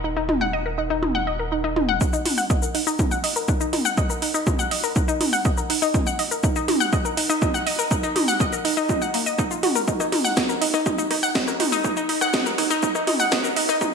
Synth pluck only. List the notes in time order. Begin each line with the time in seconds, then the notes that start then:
0.04 D#4
0.17 D#4
0.29 D#4
0.41 F#5
0.53 D#5
0.66 A#4
0.78 D#4
0.90 D#4
1.02 D#4
1.15 F#5
1.27 D#5
1.40 A#4
1.52 D#4
1.64 D#4
1.76 D#4
1.89 F#5
2.01 D#4
2.13 D#4
2.25 D#4
2.38 F#5
2.50 D#5
2.62 A#4
2.74 D#4
2.87 D#4
2.99 D#4
3.11 F#5
3.24 D#5
3.36 A#4
3.48 D#4
3.61 D#4
3.73 D#4
3.85 F#5
3.97 D#5
4.10 A#4
4.22 D#4
4.34 D#4
4.47 D#4
4.59 F#5
4.71 D#5
4.84 A#4
4.96 D#4
5.08 D#4
5.21 D#4
5.33 F#5
5.45 D#5
5.57 A#4
5.70 D#4
5.82 D#4
5.94 D#4
6.07 F#5
6.19 D#5
6.31 A#4
6.44 D#4
6.56 D#4
6.68 D#4
6.80 F#5
6.93 D#5
7.05 A#4
7.17 D#4
7.30 D#4
7.42 D#4
7.54 F#5
7.66 D#5
7.79 A#4
7.91 D#4
8.03 D#4
8.16 D#4
8.28 F#5
8.40 D#5
8.53 A#4
8.65 D#4
8.77 D#4
8.89 D#4
9.02 F#5
9.14 A#3
9.26 D#5
9.39 D#4
9.51 F4
9.63 F#4
9.75 A#4
9.88 D#4
10.00 D#4
10.12 D#4
10.24 F#5
10.37 D#5
10.49 A#4
10.61 D#4
10.74 D#4
10.86 D#4
10.98 D#4
11.11 D#4
11.23 F#5
11.35 D#5
11.48 A#4
11.60 D#4
11.72 D#4
11.84 D#4
11.97 D#4
12.09 D#4
12.21 F#5
12.34 D#5
12.46 A#4
12.58 D#4
12.70 D#4
12.83 D#4
12.95 D#4
13.07 D#4
13.20 F#5
13.32 D#5
13.44 A#4
13.56 D#4
13.69 D#4
13.81 D#4